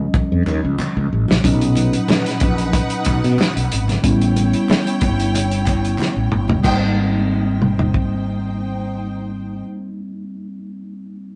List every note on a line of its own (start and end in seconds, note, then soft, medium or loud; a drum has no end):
0.00 1.39 F3 medium
0.00 1.39 G3 medium
0.00 1.40 C#4 medium
0.00 0.75 D#5 medium
0.00 0.74 D#6 medium
0.14 kick loud
0.14 muted conga medium
0.32 0.43 F2 medium
0.46 0.60 D#2 medium
0.46 clap medium
0.46 muted conga soft
0.65 0.75 C#2 medium
0.78 clap loud
0.78 high conga medium
0.97 1.08 C#2 loud
1.13 1.25 A1 medium
1.28 1.41 A#1 medium
1.28 snare loud
1.28 high conga medium
1.42 1.93 B1 loud
1.42 3.99 A#2 medium
1.42 3.99 F#3 medium
1.42 4.00 C#4 medium
1.42 4.00 D#4 medium
1.42 4.00 B4 medium
1.42 4.00 F#5 medium
1.42 kick loud
1.42 closed hi-hat medium
1.61 closed hi-hat soft
1.75 closed hi-hat medium
1.75 muted conga medium
1.93 closed hi-hat medium
2.08 snare loud
2.08 clap medium
2.08 high conga medium
2.26 snare soft
2.26 closed hi-hat medium
2.40 2.79 A#1 medium
2.40 kick medium
2.40 closed hi-hat medium
2.40 muted conga soft
2.40 low conga medium
2.58 closed hi-hat soft
2.73 kick medium
2.73 closed hi-hat medium
2.73 muted conga soft
2.90 closed hi-hat medium
3.05 3.20 B1 medium
3.05 kick medium
3.05 clap medium
3.05 closed hi-hat medium
3.05 muted conga soft
3.24 3.35 B2 medium
3.24 closed hi-hat soft
3.38 snare loud
3.38 clap medium
3.38 high conga medium
3.57 3.68 B1 medium
3.57 closed hi-hat medium
3.72 3.96 G#1 medium
3.72 closed hi-hat medium
3.88 snare soft
3.88 closed hi-hat soft
3.88 high conga medium
4.02 4.53 A1 loud
4.02 6.59 G3 medium
4.02 6.60 B3 medium
4.02 6.61 C#4 medium
4.02 6.60 E4 medium
4.02 6.61 E4 medium
4.02 6.60 C#5 medium
4.02 6.60 G5 medium
4.02 kick loud
4.02 closed hi-hat medium
4.21 closed hi-hat soft
4.36 closed hi-hat medium
4.36 muted conga medium
4.53 closed hi-hat soft
4.69 snare loud
4.69 clap medium
4.69 high conga medium
4.87 closed hi-hat medium
5.01 5.95 G1 medium
5.01 kick medium
5.01 closed hi-hat medium
5.01 muted conga soft
5.01 low conga medium
5.20 closed hi-hat soft
5.35 closed hi-hat medium
5.35 muted conga soft
5.51 closed hi-hat medium
5.66 kick medium
5.66 clap medium
5.66 closed hi-hat medium
5.66 muted conga soft
5.85 closed hi-hat soft
5.98 snare medium
5.98 clap medium
5.98 high conga medium
6.16 6.31 A1 medium
6.32 6.57 G1 medium
6.32 mid tom medium
6.48 floor tom medium
6.48 high conga medium
6.60 9.58 G3 medium
6.60 9.60 A#3 medium
6.60 9.61 D#4 medium
6.60 9.62 G5 medium
6.64 9.62 G#1 medium
6.64 9.62 C4 medium
6.64 9.64 D#4 medium
6.64 9.62 C5 medium
6.64 kick loud
6.64 clap medium
6.64 crash medium
6.64 muted conga medium
7.62 mid tom medium
7.79 floor tom medium
7.94 kick medium